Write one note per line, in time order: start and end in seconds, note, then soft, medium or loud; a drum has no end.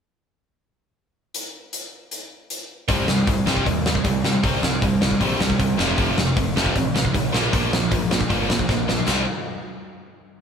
1.34 closed hi-hat medium
1.73 closed hi-hat medium
2.11 closed hi-hat soft
2.50 closed hi-hat medium
2.88 3.05 C2 loud
2.88 3.07 C3 medium
2.88 3.07 G3 medium
2.88 3.07 C4 medium
2.88 kick loud
2.88 open hi-hat medium
3.08 3.24 C2 medium
3.08 3.25 C3 medium
3.08 3.26 G3 medium
3.08 snare loud
3.27 3.43 C2 medium
3.27 3.45 C3 medium
3.27 3.45 G3 medium
3.27 kick loud
3.27 open hi-hat medium
3.46 3.63 C2 medium
3.46 3.65 C3 medium
3.46 3.65 G3 medium
3.46 3.65 C4 loud
3.46 snare loud
3.57 kick medium
3.66 3.98 D#2 medium
3.66 3.83 C3 medium
3.66 3.84 G3 medium
3.66 kick medium
3.66 open hi-hat medium
3.86 4.03 C3 medium
3.86 4.04 G3 medium
3.86 snare loud
3.95 kick medium
4.04 4.20 C2 medium
4.04 4.22 C3 medium
4.04 4.22 G3 medium
4.04 kick medium
4.04 open hi-hat medium
4.24 4.40 C3 medium
4.24 4.42 C3 medium
4.24 4.42 G3 medium
4.24 snare loud
4.44 4.60 C2 medium
4.44 4.62 C3 medium
4.44 4.62 G3 medium
4.44 4.62 C4 medium
4.44 kick loud
4.44 open hi-hat medium
4.63 4.79 C2 medium
4.63 4.80 C3 medium
4.63 4.81 G3 medium
4.63 snare loud
4.82 5.14 C2 medium
4.82 5.00 C3 medium
4.82 5.00 G3 medium
4.82 kick loud
4.82 open hi-hat medium
5.01 5.19 C3 medium
5.01 5.19 G3 medium
5.01 snare loud
5.11 kick medium
5.20 5.37 A#1 medium
5.20 5.39 C3 medium
5.20 5.39 G3 loud
5.20 5.39 C4 loud
5.20 kick medium
5.20 open hi-hat soft
5.40 5.56 C2 loud
5.40 5.58 C3 medium
5.40 5.58 G3 medium
5.40 snare loud
5.50 kick medium
5.59 5.75 C2 medium
5.59 5.77 C3 medium
5.59 5.77 G3 medium
5.59 kick loud
5.59 open hi-hat medium
5.77 5.94 F1 medium
5.77 5.96 F2 loud
5.77 5.97 C3 medium
5.77 5.97 F3 loud
5.77 snare loud
5.98 6.14 F1 loud
5.98 6.16 F2 medium
5.98 6.16 C3 loud
5.98 6.17 F3 loud
5.98 kick loud
5.98 open hi-hat medium
6.17 6.33 F1 medium
6.17 6.35 F2 medium
6.17 6.35 C3 medium
6.17 snare loud
6.36 6.53 F1 medium
6.36 6.55 F2 medium
6.36 6.55 C3 medium
6.36 kick loud
6.36 open hi-hat medium
6.55 6.72 F1 medium
6.55 6.75 F2 medium
6.55 6.75 C3 loud
6.55 6.75 F3 loud
6.55 snare loud
6.66 kick medium
6.76 7.08 A1 medium
6.76 6.93 F2 medium
6.76 6.94 C3 medium
6.76 kick medium
6.76 open hi-hat medium
6.95 7.13 F2 medium
6.95 7.13 C3 medium
6.95 snare loud
7.05 kick medium
7.14 7.31 A1 loud
7.14 7.32 F2 medium
7.14 7.32 C3 medium
7.14 kick medium
7.14 open hi-hat medium
7.32 7.49 A#1 medium
7.32 7.51 A#2 medium
7.32 7.51 F3 medium
7.32 7.52 A#3 medium
7.32 snare loud
7.52 7.69 A#1 loud
7.52 7.71 A#2 medium
7.52 7.71 F3 loud
7.52 7.71 A#3 medium
7.52 kick loud
7.52 open hi-hat medium
7.72 7.88 A#1 medium
7.72 7.90 A#2 medium
7.72 7.90 F3 medium
7.72 snare loud
7.91 8.24 A#1 medium
7.91 8.09 A#2 medium
7.91 8.09 F3 medium
7.91 kick loud
7.91 open hi-hat medium
8.11 8.28 A#2 medium
8.11 8.28 F3 medium
8.11 snare loud
8.21 kick medium
8.30 8.46 G1 medium
8.30 8.48 A#2 medium
8.30 8.48 F3 medium
8.30 8.48 A#3 loud
8.30 kick medium
8.30 open hi-hat soft
8.49 8.65 A#1 loud
8.49 8.67 A#2 medium
8.49 8.67 F3 medium
8.49 snare loud
8.59 kick medium
8.69 9.01 A#1 medium
8.69 8.86 A#2 medium
8.69 8.87 F3 medium
8.69 kick loud
8.69 snare medium
8.88 9.05 A#2 medium
8.88 9.06 F3 medium
8.88 snare medium
9.07 9.25 C2 medium
9.07 9.23 C3 medium
9.07 9.23 G3 loud
9.07 9.23 C4 loud
9.07 snare loud
9.07 splash medium